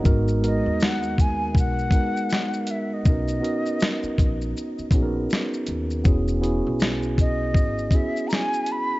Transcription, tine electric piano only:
0.00 0.36 G#3 medium
0.00 0.37 B3 medium
0.00 0.27 D#5 medium
0.04 0.37 D#4 medium
0.04 0.37 F#4 medium
0.04 0.38 A#4 loud
0.42 1.66 G#3 medium
0.42 1.66 B3 medium
0.42 1.66 D#4 medium
0.42 1.67 F#4 medium
0.42 1.67 A#4 medium
1.92 2.87 G#3 medium
1.92 2.88 B3 medium
1.92 2.88 D#4 medium
1.92 2.88 F#4 medium
1.92 2.89 A#4 medium
3.07 3.38 B3 medium
3.07 3.38 C#4 medium
3.07 3.39 D#4 medium
3.07 3.39 F#4 medium
3.07 3.39 A#4 medium
3.40 4.65 B3 medium
3.40 4.65 C#4 medium
3.40 4.66 D#4 medium
3.40 4.66 F#4 medium
3.40 4.66 A#4 medium
4.93 5.88 B3 medium
4.93 5.88 C#4 medium
4.93 5.89 D#4 medium
4.93 5.89 F#4 medium
4.93 5.02 G#4 medium
5.03 5.93 A#4 medium
6.04 6.37 B3 medium
6.04 6.37 C#4 medium
6.04 6.38 E4 medium
6.04 6.38 F#4 medium
6.04 6.38 G#4 loud
6.41 7.65 B3 medium
6.41 7.66 C#4 medium
6.41 7.66 E4 medium
6.41 7.66 F#4 medium
6.41 7.67 G#4 medium
7.92 8.87 B3 medium
7.92 8.88 C#4 medium
7.92 8.88 E4 medium
7.92 8.88 F#4 medium
7.92 8.89 G#4 medium

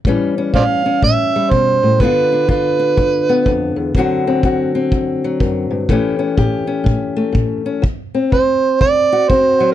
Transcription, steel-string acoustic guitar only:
0.06 0.51 A2 medium
0.06 1.99 E3 medium
0.06 1.35 G3 medium
0.06 0.37 C#4 medium
0.38 0.54 C#4 medium
0.54 0.99 A2 medium
0.54 0.84 C#4 medium
0.86 1.98 C#4 medium
1.03 1.48 A2 medium
1.36 1.99 G3 medium
1.51 1.82 B2 medium
1.83 2.00 A2 medium
2.01 2.46 G2 medium
2.01 3.95 D3 medium
2.01 3.28 B3 medium
2.01 2.32 D4 medium
2.01 2.48 F4 medium
2.32 2.79 D4 medium
2.48 2.93 G2 medium
2.48 3.93 F4 medium
2.79 3.93 D4 medium
2.97 3.42 G2 medium
3.29 3.93 B3 medium
3.46 3.76 F2 medium
3.76 3.94 E2 medium
3.96 4.40 D2 medium
3.96 5.89 D3 medium
3.96 5.23 F#3 medium
3.96 4.26 C4 medium
3.96 4.44 F#4 medium
4.27 4.74 C4 medium
4.43 4.89 D2 medium
4.43 5.88 F#4 medium
4.75 5.88 C4 medium
4.92 5.37 D2 medium
5.24 5.89 F#3 medium
5.40 5.70 F#2 medium
5.71 5.89 G2 medium
5.89 6.35 A2 medium
5.89 7.82 E3 medium
5.89 7.15 A3 medium
5.89 6.18 C#4 medium
5.89 6.37 G4 medium
6.19 6.66 C#4 medium
6.37 6.83 A2 medium
6.37 7.82 G4 medium
6.67 7.64 C#4 medium
6.84 7.30 A2 medium
7.16 7.81 A3 medium
7.32 7.79 A2 medium
7.66 7.82 C#4 soft
7.82 8.28 D2 medium
8.14 9.29 C4 medium
8.32 8.77 D2 medium
8.81 9.26 D2 medium
9.12 9.74 F#4 medium
9.29 9.74 D2 medium
9.29 9.74 C4 medium
9.60 9.74 F#3 medium

